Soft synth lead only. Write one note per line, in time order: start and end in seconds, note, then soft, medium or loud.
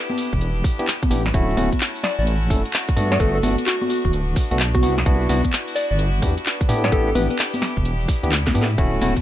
2.04 2.13 D5 medium
2.19 2.24 D5 medium
3.12 3.18 D5 medium
3.20 3.30 A4 medium
3.35 3.40 A4 medium
3.66 3.76 F#4 medium
3.81 3.87 F#4 medium
3.90 4.00 F#4 medium
4.05 4.10 F#4 medium
4.75 4.80 F#4 medium
4.83 4.92 F#4 medium
5.75 5.85 D5 medium
5.91 5.96 D5 medium
6.84 6.91 D5 medium
6.92 7.02 A4 medium
7.08 7.13 A4 medium
7.15 7.25 B4 medium
7.31 7.36 B4 medium